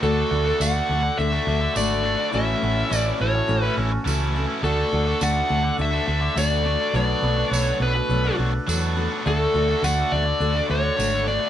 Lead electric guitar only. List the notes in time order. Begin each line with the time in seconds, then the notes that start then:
0.03 A4
0.62 F#5
1.18 E5
1.77 D5
2.34 E5
2.98 D5
3.21 C#5
3.62 B4
4.64 A4
5.23 F#5
5.82 E5
6.39 D5
6.96 D5
7.52 C#5
7.82 B4
9.27 A4
9.84 F#5
10.12 D5
10.71 C#5
11.28 D5